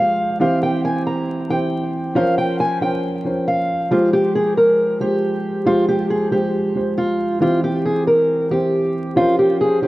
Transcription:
0.00 0.43 F3 loud
0.00 0.43 G#3 medium
0.00 0.41 G4 medium
0.00 0.41 C5 loud
0.00 0.38 F5 medium
0.40 1.16 E3 loud
0.40 1.16 C4 medium
0.40 1.16 G4 loud
0.40 1.16 C5 loud
0.40 0.60 F5 medium
0.63 0.82 G5 medium
0.85 1.04 G#5 medium
1.07 1.48 A#5 medium
1.50 2.06 E3 medium
1.50 2.07 C4 medium
1.50 2.07 G4 medium
1.50 2.07 C5 medium
1.50 2.12 G5 medium
2.15 2.72 F3 loud
2.15 2.72 C#4 medium
2.15 2.73 A#4 medium
2.15 2.73 C5 loud
2.15 2.35 F5 loud
2.38 2.57 G5 medium
2.60 2.79 G#5 medium
2.81 3.19 F3 medium
2.81 3.19 C#4 medium
2.81 3.20 A#4 medium
2.81 3.20 C5 medium
2.81 3.44 G5 medium
3.25 3.81 F3 medium
3.25 3.82 C#4 medium
3.25 3.82 A#4 medium
3.25 3.82 C5 medium
3.48 3.89 F5 medium
3.91 4.66 F3 medium
3.91 4.66 G#3 medium
3.91 4.11 F4 medium
3.91 4.67 G4 medium
3.91 4.67 C5 loud
4.13 4.32 G4 medium
4.35 4.54 G#4 medium
4.57 4.98 A#4 medium
5.00 5.57 F3 medium
5.00 5.57 G#3 medium
5.00 5.63 G4 medium
5.00 5.57 G4 medium
5.00 5.58 C5 medium
5.66 6.22 F3 medium
5.66 6.23 G#3 medium
5.66 5.86 F4 loud
5.66 6.23 G4 medium
5.66 6.23 C5 loud
5.89 6.08 G4 medium
6.10 6.30 G#4 medium
6.31 6.69 F3 medium
6.31 6.70 G#3 medium
6.31 6.94 G4 medium
6.31 6.70 G4 medium
6.31 6.70 C5 medium
6.75 7.32 F3 medium
6.75 7.32 G#3 medium
6.75 7.33 G4 medium
6.75 7.33 C5 medium
6.98 7.39 F4 medium
7.40 8.16 E3 medium
7.40 8.17 C4 medium
7.40 7.61 F4 medium
7.40 8.17 G4 medium
7.40 8.17 C5 loud
7.64 7.83 G4 medium
7.85 8.05 G#4 medium
8.07 8.49 A#4 medium
8.50 9.07 E3 medium
8.50 9.07 C4 medium
8.50 9.13 G4 medium
8.50 9.08 G4 medium
8.50 9.08 C5 medium
9.16 9.73 F3 medium
9.16 9.73 C#4 medium
9.16 9.36 F4 loud
9.16 9.73 A#4 medium
9.16 9.74 C5 loud
9.39 9.58 G4 medium
9.61 9.80 G#4 medium
9.82 9.88 F3 medium
9.82 9.88 C#4 medium
9.82 9.88 G4 medium
9.82 9.88 A#4 medium
9.82 9.88 C5 medium

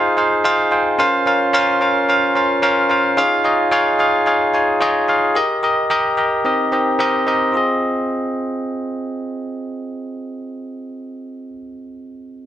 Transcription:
0.00 0.17 D#4 loud
0.00 0.17 F4 loud
0.00 0.17 G#4 loud
0.00 0.18 C5 loud
0.00 0.18 F5 loud
0.00 1.02 G#5 loud
0.17 0.41 D#4 medium
0.17 0.41 F4 medium
0.17 0.41 G#4 medium
0.17 0.41 C5 medium
0.17 0.42 F5 medium
0.44 0.68 D#4 loud
0.44 0.68 F4 loud
0.44 0.69 G#4 loud
0.44 0.69 C5 loud
0.44 0.69 F5 loud
0.71 0.95 D#4 medium
0.71 0.96 F4 medium
0.71 0.96 G#4 medium
0.71 0.96 C5 medium
0.71 0.96 G5 loud
0.99 1.23 C#4 loud
0.99 1.23 F4 loud
0.99 1.23 A#4 loud
0.99 1.23 C5 loud
0.99 1.23 F5 loud
1.26 1.50 C#4 loud
1.26 1.50 F4 medium
1.26 1.50 A#4 medium
1.26 1.51 C5 medium
1.26 1.51 F5 loud
1.53 1.77 C#4 loud
1.53 1.77 F4 loud
1.53 1.78 A#4 loud
1.53 1.78 C5 loud
1.53 1.78 F5 loud
1.81 2.05 C#4 medium
1.81 2.05 F4 medium
1.81 2.05 A#4 medium
1.81 2.05 C5 medium
1.81 2.05 F5 loud
2.08 2.32 C#4 medium
2.08 2.32 F4 medium
2.08 2.32 A#4 medium
2.08 2.33 C5 medium
2.08 2.33 F5 loud
2.35 2.59 C#4 medium
2.35 2.59 F4 medium
2.35 2.60 A#4 medium
2.35 2.60 C5 medium
2.35 2.60 F5 medium
2.62 2.86 C#4 loud
2.62 2.87 F4 loud
2.62 2.87 A#4 loud
2.62 2.87 C5 loud
2.62 2.87 F5 loud
2.90 3.14 C#4 medium
2.90 3.14 F4 medium
2.90 3.14 A#4 medium
2.90 3.14 C5 medium
2.90 3.14 F5 loud
3.17 3.41 D#4 loud
3.17 3.41 F4 loud
3.17 3.41 G#4 loud
3.17 3.41 C#5 loud
3.17 3.42 F5 loud
3.44 3.68 D#4 loud
3.44 3.68 F4 medium
3.44 3.69 G#4 medium
3.44 3.69 C#5 medium
3.44 3.69 D#5 loud
3.71 3.95 D#4 loud
3.71 3.96 F4 loud
3.71 3.96 G#4 loud
3.71 3.96 C#5 loud
3.71 3.96 F5 loud
3.99 4.23 D#4 medium
3.99 4.23 F4 medium
3.99 4.23 G#4 medium
3.99 4.23 C#5 medium
3.99 4.24 F5 loud
4.26 4.50 D#4 medium
4.26 4.50 F4 medium
4.26 4.50 G#4 medium
4.26 4.51 C#5 medium
4.26 4.51 F5 loud
4.53 4.77 D#4 medium
4.53 4.78 F4 medium
4.53 4.78 G#4 medium
4.53 4.78 C#5 medium
4.53 4.78 G#5 loud
4.81 5.05 D#4 loud
4.81 5.05 F4 loud
4.81 5.05 G#4 loud
4.81 5.05 C#5 loud
4.81 5.05 D#5 loud
5.08 5.32 D#4 medium
5.08 5.32 F4 medium
5.08 5.32 G#4 medium
5.08 5.33 C#5 medium
5.08 5.33 F5 loud
5.35 5.59 G4 loud
5.35 5.60 A#4 loud
5.35 5.60 D#5 loud
5.63 5.87 G4 medium
5.63 5.87 A#4 medium
5.63 5.87 D#5 loud
5.90 6.14 G4 loud
5.90 6.14 A#4 loud
5.90 6.15 D#5 loud
6.17 6.41 G4 medium
6.17 6.42 A#4 medium
6.17 6.42 D#5 loud
6.45 6.69 C4 medium
6.45 6.69 D#4 medium
6.45 6.69 G4 medium
6.45 6.69 A#4 medium
6.45 6.69 D#5 loud
6.72 6.96 C4 medium
6.72 6.96 D#4 medium
6.72 6.96 G4 medium
6.72 6.96 A#4 medium
6.72 6.96 D#5 medium
6.99 7.23 C4 loud
6.99 7.23 D#4 loud
6.99 7.23 G4 loud
6.99 7.24 A#4 loud
6.99 7.24 D#5 loud
7.27 7.50 C4 medium
7.27 7.51 D#4 medium
7.27 7.51 G4 medium
7.27 7.51 A#4 medium
7.27 7.51 D#5 loud
7.52 11.49 C4 medium
7.52 11.50 F4 medium
7.52 11.52 G#4 medium
7.57 11.54 D#5 medium

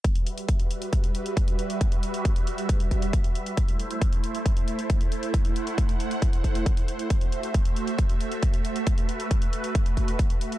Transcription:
0.04 3.54 G3 medium
0.04 3.54 F#4 medium
0.04 3.54 B4 medium
0.04 5.30 E5 medium
0.04 kick loud
0.04 closed hi-hat medium
0.15 closed hi-hat soft
0.27 closed hi-hat medium
0.38 closed hi-hat medium
0.49 kick loud
0.49 closed hi-hat medium
0.60 closed hi-hat soft
0.71 closed hi-hat medium
0.82 closed hi-hat soft
0.93 kick loud
0.93 closed hi-hat medium
1.04 closed hi-hat soft
1.15 closed hi-hat medium
1.26 closed hi-hat soft
1.37 kick loud
1.37 closed hi-hat medium
1.48 closed hi-hat medium
1.59 closed hi-hat medium
1.70 closed hi-hat medium
1.81 kick loud
1.81 closed hi-hat medium
1.92 closed hi-hat soft
2.03 closed hi-hat medium
2.14 closed hi-hat soft
2.25 kick loud
2.25 closed hi-hat medium
2.36 closed hi-hat soft
2.47 closed hi-hat medium
2.58 closed hi-hat soft
2.69 kick loud
2.69 closed hi-hat medium
2.80 closed hi-hat soft
2.91 kick medium
2.91 closed hi-hat medium
3.02 closed hi-hat soft
3.13 kick loud
3.13 closed hi-hat medium
3.24 closed hi-hat soft
3.35 closed hi-hat medium
3.46 closed hi-hat medium
3.57 7.07 A3 medium
3.57 7.07 E4 medium
3.57 8.83 C5 medium
3.57 kick loud
3.57 closed hi-hat medium
3.68 closed hi-hat soft
3.80 closed hi-hat medium
3.91 closed hi-hat soft
4.01 kick loud
4.01 closed hi-hat medium
4.13 closed hi-hat soft
4.24 closed hi-hat medium
4.35 closed hi-hat soft
4.46 kick loud
4.46 closed hi-hat medium
4.57 closed hi-hat soft
4.68 closed hi-hat medium
4.79 closed hi-hat soft
4.90 kick loud
4.90 closed hi-hat medium
5.01 closed hi-hat soft
5.12 closed hi-hat medium
5.23 closed hi-hat soft
5.34 7.09 F#5 medium
5.34 kick loud
5.34 closed hi-hat medium
5.45 closed hi-hat soft
5.56 closed hi-hat medium
5.67 closed hi-hat soft
5.78 kick loud
5.78 closed hi-hat medium
5.89 closed hi-hat soft
6.00 closed hi-hat medium
6.11 closed hi-hat soft
6.22 kick loud
6.22 closed hi-hat medium
6.33 closed hi-hat soft
6.44 kick medium
6.44 closed hi-hat medium
6.55 closed hi-hat soft
6.66 kick loud
6.66 closed hi-hat medium
6.77 closed hi-hat soft
6.88 closed hi-hat medium
6.99 closed hi-hat soft
7.10 10.58 A3 medium
7.10 10.58 F#4 medium
7.10 10.58 E5 medium
7.10 kick loud
7.10 closed hi-hat medium
7.21 closed hi-hat soft
7.32 closed hi-hat medium
7.43 closed hi-hat soft
7.54 kick loud
7.54 closed hi-hat medium
7.65 closed hi-hat soft
7.76 closed hi-hat medium
7.87 closed hi-hat soft
7.98 kick loud
7.98 closed hi-hat medium
8.10 closed hi-hat soft
8.21 closed hi-hat medium
8.32 closed hi-hat soft
8.43 kick loud
8.43 closed hi-hat medium
8.54 closed hi-hat soft
8.65 closed hi-hat medium
8.76 closed hi-hat soft
8.87 10.58 B4 medium
8.87 kick loud
8.87 closed hi-hat medium
8.98 closed hi-hat soft
9.09 closed hi-hat medium
9.20 closed hi-hat medium
9.31 kick loud
9.31 closed hi-hat medium
9.42 closed hi-hat soft
9.53 closed hi-hat medium
9.64 closed hi-hat soft
9.75 kick loud
9.75 closed hi-hat medium
9.86 closed hi-hat soft
9.97 kick medium
9.97 closed hi-hat medium
10.08 closed hi-hat soft
10.19 kick loud
10.19 closed hi-hat medium
10.30 closed hi-hat soft
10.41 closed hi-hat medium
10.52 closed hi-hat soft

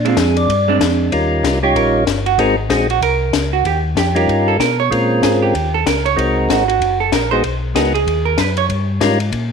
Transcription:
0.00 0.16 A#2 medium
0.05 0.46 G#3 medium
0.05 0.47 C4 medium
0.05 0.47 D4 medium
0.05 0.18 F4 medium
0.05 ride medium
0.17 0.48 F2 loud
0.17 0.37 G#4 medium
0.17 kick soft
0.17 snare medium
0.17 hi-hat pedal medium
0.17 ride medium
0.37 0.78 D5 loud
0.37 ride soft
0.49 0.79 G2 medium
0.49 kick soft
0.49 ride medium
0.68 1.10 G#3 medium
0.68 1.10 C4 medium
0.68 1.10 D4 medium
0.80 1.11 F2 medium
0.80 kick soft
0.80 snare medium
0.80 hi-hat pedal medium
0.80 ride medium
1.12 1.43 D#2 medium
1.12 1.59 G3 medium
1.12 1.59 C#4 medium
1.12 1.59 D#4 medium
1.12 1.59 F4 soft
1.12 1.60 A#4 medium
1.12 kick soft
1.12 ride medium
1.43 1.74 C2 medium
1.43 kick soft
1.43 snare medium
1.43 hi-hat pedal medium
1.43 ride medium
1.63 2.04 G3 medium
1.63 2.04 C#4 medium
1.63 2.04 D#4 medium
1.63 2.05 F4 medium
1.63 1.75 G4 medium
1.63 2.05 C#5 medium
1.75 2.06 A#1 medium
1.75 2.23 A#4 medium
1.75 kick soft
1.75 ride medium
2.07 2.37 G1 medium
2.07 kick soft
2.07 snare medium
2.07 hi-hat pedal medium
2.07 ride medium
2.26 2.39 F#4 medium
2.26 ride soft
2.38 2.69 G#1 medium
2.38 2.56 G#3 medium
2.38 2.56 C4 medium
2.38 2.56 D#4 medium
2.38 2.56 F#4 medium
2.38 2.58 G#4 medium
2.38 2.56 A#4 medium
2.38 kick soft
2.38 ride medium
2.69 3.00 A#1 medium
2.69 2.87 G#3 medium
2.69 2.87 C4 medium
2.69 2.88 D#4 medium
2.69 2.88 F#4 medium
2.69 2.88 G#4 medium
2.69 kick soft
2.69 snare medium
2.69 hi-hat pedal medium
2.69 ride medium
2.90 3.02 F#4 medium
2.90 ride soft
3.01 3.32 C2 loud
3.01 3.49 A#4 loud
3.01 kick soft
3.01 ride medium
3.33 3.63 C#2 medium
3.33 kick soft
3.33 snare medium
3.33 hi-hat pedal medium
3.33 ride medium
3.53 3.65 F#4 medium
3.65 3.95 D#2 medium
3.65 3.77 G4 medium
3.65 kick soft
3.65 ride medium
3.96 4.27 F2 loud
3.96 4.16 G4 medium
3.96 kick soft
3.96 snare medium
3.96 hi-hat pedal medium
3.96 ride medium
4.15 4.57 G3 medium
4.15 4.57 C#4 medium
4.15 4.57 D#4 medium
4.15 4.57 F4 medium
4.15 4.46 G4 medium
4.15 4.57 A#4 medium
4.15 ride medium
4.28 4.58 G2 medium
4.28 kick soft
4.28 ride medium
4.48 4.59 A4 medium
4.59 4.90 B2 medium
4.59 4.78 A#4 medium
4.59 kick soft
4.59 snare medium
4.59 hi-hat pedal medium
4.59 ride medium
4.80 4.91 C#5 loud
4.91 5.22 A#2 medium
4.91 5.54 G#3 medium
4.91 5.54 C4 medium
4.91 5.54 C#4 medium
4.91 5.54 F4 medium
4.91 5.55 A#4 medium
4.91 kick soft
4.91 ride medium
5.23 5.53 G#2 medium
5.23 5.42 G#4 medium
5.23 kick soft
5.23 snare medium
5.23 hi-hat pedal medium
5.23 ride medium
5.42 5.72 G4 medium
5.54 5.85 D#2 medium
5.54 kick soft
5.54 ride medium
5.74 5.86 A4 loud
5.86 6.16 C#2 medium
5.86 6.05 A#4 medium
5.86 kick soft
5.86 snare medium
5.86 hi-hat pedal medium
5.86 ride medium
6.05 6.17 C#5 loud
6.05 ride soft
6.16 6.48 C2 medium
6.16 6.64 G#3 medium
6.16 6.64 C4 medium
6.16 6.64 D#4 medium
6.16 6.64 F#4 medium
6.16 6.64 A#4 medium
6.16 kick soft
6.16 ride medium
6.49 6.80 G#1 medium
6.49 6.67 F#4 medium
6.49 kick soft
6.49 snare medium
6.49 hi-hat pedal medium
6.49 ride medium
6.68 6.98 F#4 medium
6.68 ride soft
6.80 7.11 F#1 medium
6.80 kick soft
6.80 ride medium
7.00 7.12 A4 medium
7.12 7.43 A#1 medium
7.12 7.31 A#4 medium
7.12 kick soft
7.12 snare medium
7.12 hi-hat pedal medium
7.12 ride medium
7.31 7.43 G#3 medium
7.31 7.43 B3 medium
7.31 7.43 D#4 medium
7.31 7.43 F#4 medium
7.31 7.43 G#4 medium
7.31 7.43 C5 loud
7.43 7.74 B1 medium
7.43 kick soft
7.43 ride medium
7.75 8.06 C#2 medium
7.75 7.92 G#3 medium
7.75 7.93 B3 medium
7.75 7.93 D#4 medium
7.75 7.93 F#4 medium
7.75 7.93 G#4 medium
7.75 7.93 A#4 medium
7.75 kick soft
7.75 snare medium
7.75 hi-hat pedal medium
7.75 ride medium
7.94 8.24 G#4 medium
7.94 ride soft
8.07 8.37 D#2 medium
8.07 kick soft
8.07 ride medium
8.25 8.39 A#4 loud
8.38 8.69 F#2 medium
8.38 8.57 B4 loud
8.38 kick soft
8.38 snare medium
8.38 hi-hat pedal medium
8.38 ride medium
8.57 8.65 C#5 loud
8.57 ride medium
8.69 9.00 G2 medium
8.69 kick soft
8.69 ride medium
9.00 9.32 G#2 loud
9.00 9.18 G3 medium
9.00 9.18 C#4 medium
9.00 9.19 D#4 medium
9.00 9.19 F4 medium
9.00 9.19 A#4 medium
9.00 kick soft
9.00 snare medium
9.00 hi-hat pedal medium
9.00 ride medium
9.20 ride soft
9.32 9.52 A#2 medium
9.32 kick soft
9.32 ride medium

